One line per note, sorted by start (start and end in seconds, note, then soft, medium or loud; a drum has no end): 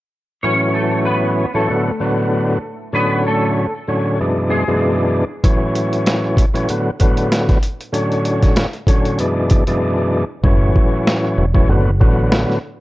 0.43 1.45 A2 medium
0.43 1.45 E3 medium
0.43 1.45 F#3 medium
0.43 0.72 C#4 medium
0.43 1.46 C#4 medium
0.43 0.72 C#5 medium
0.74 1.03 A3 medium
0.74 1.03 A4 medium
1.05 1.52 B3 medium
1.05 1.52 B4 medium
1.54 1.68 A2 medium
1.54 1.68 E3 medium
1.54 1.69 F#3 medium
1.54 2.90 A3 medium
1.54 1.69 C#4 medium
1.54 2.90 A4 medium
1.69 1.90 A2 medium
1.69 1.91 D3 medium
1.69 1.91 F#3 medium
1.69 1.91 B3 medium
1.99 2.58 A2 medium
1.99 2.58 D3 medium
1.99 2.58 F#3 medium
1.99 2.58 B3 loud
2.93 3.66 A2 medium
2.93 3.66 D3 medium
2.93 3.67 F#3 medium
2.93 3.23 B3 medium
2.93 3.67 C#4 medium
2.93 3.22 B4 loud
3.27 3.72 A3 medium
3.27 3.72 A4 medium
3.87 4.19 A2 medium
3.87 4.19 D3 medium
3.87 4.19 F#3 medium
3.87 4.19 C#4 medium
4.19 4.64 F#2 medium
4.19 4.64 B2 medium
4.19 4.64 E3 medium
4.19 4.64 G#3 medium
4.19 4.64 D4 medium
4.50 4.96 G#3 medium
4.50 4.96 G#4 medium
4.67 5.24 F#2 medium
4.67 5.25 B2 medium
4.67 5.25 E3 medium
4.67 5.25 G#3 medium
4.67 5.25 D4 loud
5.44 6.45 A2 medium
5.44 6.45 E3 medium
5.44 6.46 F#3 medium
5.44 6.46 C#4 medium
5.44 kick loud
5.44 closed hi-hat medium
5.75 closed hi-hat medium
5.93 closed hi-hat soft
6.06 snare loud
6.06 closed hi-hat medium
6.37 kick medium
6.37 closed hi-hat medium
6.54 6.68 A2 loud
6.54 6.69 E3 medium
6.54 6.69 F#3 medium
6.54 6.69 C#4 loud
6.54 closed hi-hat soft
6.69 6.90 A2 medium
6.69 6.91 D3 medium
6.69 6.91 F#3 medium
6.69 6.91 B3 loud
6.69 closed hi-hat medium
7.00 7.58 A2 medium
7.00 7.58 D3 medium
7.00 7.58 F#3 medium
7.00 7.58 B3 loud
7.00 kick medium
7.00 closed hi-hat medium
7.17 closed hi-hat medium
7.32 snare medium
7.32 closed hi-hat medium
7.49 kick medium
7.49 snare soft
7.49 closed hi-hat soft
7.63 closed hi-hat medium
7.81 closed hi-hat soft
7.92 8.66 A2 medium
7.92 8.66 D3 medium
7.92 8.67 F#3 medium
7.92 8.67 C#4 loud
7.92 closed hi-hat medium
8.12 closed hi-hat soft
8.25 closed hi-hat medium
8.43 kick medium
8.43 snare soft
8.43 closed hi-hat soft
8.57 snare loud
8.57 closed hi-hat medium
8.74 closed hi-hat soft
8.87 9.19 A2 medium
8.87 9.19 D3 medium
8.87 9.19 F#3 medium
8.87 9.19 C#4 loud
8.87 kick medium
8.87 closed hi-hat medium
9.06 closed hi-hat soft
9.19 9.64 F#2 medium
9.19 9.64 B2 medium
9.19 9.64 E3 medium
9.19 9.64 G#3 medium
9.19 9.64 D4 medium
9.19 closed hi-hat medium
9.50 kick loud
9.50 closed hi-hat medium
9.67 10.24 F#2 medium
9.67 10.24 B2 medium
9.67 10.25 E3 medium
9.67 10.25 G#3 medium
9.67 10.25 D4 loud
9.67 closed hi-hat medium
10.44 10.72 F#1 loud
10.44 11.45 A2 medium
10.44 11.45 E3 medium
10.44 11.46 F#3 medium
10.44 11.46 C#4 medium
10.44 kick loud
10.76 kick loud
11.07 snare loud
11.38 11.65 E1 medium
11.54 11.68 A2 medium
11.54 11.69 E3 medium
11.54 11.69 F#3 medium
11.54 11.69 C#4 loud
11.54 kick medium
11.69 12.01 F#1 loud
11.69 11.90 A2 medium
11.69 11.91 D3 medium
11.69 11.91 F#3 medium
11.69 11.91 B3 loud
12.00 12.44 A1 loud
12.00 12.58 A2 medium
12.00 12.58 D3 medium
12.00 12.58 F#3 medium
12.00 12.59 B3 loud
12.00 kick loud
12.32 snare loud
12.49 snare soft